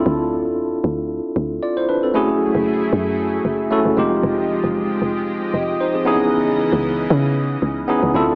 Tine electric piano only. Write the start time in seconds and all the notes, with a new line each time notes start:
Already playing: C4 D4 E4 F4 A4
1.63 F4 D5
1.77 E4 C5
1.89 D4 B4
2.03 C4 A4
2.14 A3 C#4 E4 F#4 G#4
3.71 A3 C#4 E4 F#4 A4
3.97 G#3 C4 D#4 F4 G4
5.54 G4 D#5
5.81 D#4 C5
5.95 C4 G#4
6.05 B3 C#4 D#4 E4 G#4
7.88 B3 C#4 D#4 E4 G#4
8.14 C4 D4 E4 F4 A4